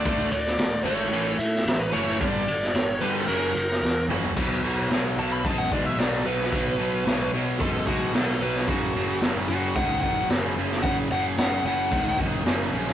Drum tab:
CC |----------------|----------------|x---------------|----------------|
RD |x-x-x-x-x-x-x-x-|x-x-x-x-x-x-----|----------------|----------------|
HH |----------------|----------------|----o---o---o---|o---o---o---o---|
SD |---oo------oo---|---oo------oo---|----o-------oo-o|----o-------oo-o|
T2 |----------------|--------------o-|----------------|----------------|
FT |----------------|---------------o|----------------|----------------|
BD |o---------------|o---------------|o-------o-o-----|o-------o-o-----|

CC |----------------|----------------|
RD |----------------|----------------|
HH |o---o---o---o---|o---o---o---o---|
SD |----o-------oo-o|----o-------oo-o|
T2 |----------------|----------------|
FT |----------------|----------------|
BD |o-------o-o-----|o-------o-o-----|